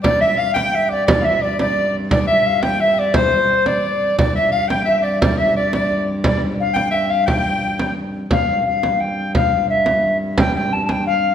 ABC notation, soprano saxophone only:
X:1
M:6/8
L:1/16
Q:3/8=116
K:Dm
V:1 name="Soprano saxophone"
d2 e2 f2 g4 d2 | d3/2 f/2 e2 d2 d4- d/2 z3/2 | d2 e4 g2 e2 d2 | c6 d6 |
d2 e2 f2 g2 e2 d2 | d2 e2 d2 d4- d/2 z3/2 | d2 z4 g2 e2 f2 | g8 z4 |
z12 | z12 | z12 |]